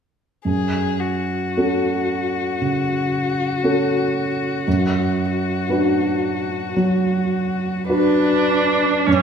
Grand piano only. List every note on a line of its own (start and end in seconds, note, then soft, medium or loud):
0.45 1.52 F#2 soft
1.57 2.56 C#4 soft
1.57 2.57 F#4 soft
1.57 2.57 A4 soft
2.61 4.26 C#3 soft
3.64 4.63 C#4 soft
3.64 4.63 F#4 soft
3.64 4.63 A4 soft
4.68 5.67 F#2 soft
5.69 6.73 D4 soft
5.69 6.73 F#4 soft
5.69 6.73 B4 soft
6.76 8.61 F#3 soft
7.89 9.03 D4 soft
7.89 9.03 F#4 soft
7.89 9.03 B4 soft
9.07 9.22 F#2 soft